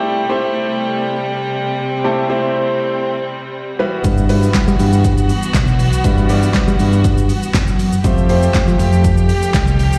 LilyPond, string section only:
\new Staff \with { instrumentName = "String section" } { \time 4/4 \key e \minor \tempo 4 = 120 << { <c g>1~ | <c g>2.~ <c g>8 <e fis'>8~ | <e fis'>1~ | <e fis'>1 |
<f g'>1 | } \\ { a2.~ a8 c'8~ | c'2.~ c'8 b8~ | b1~ | b1 |
a1 | } >> }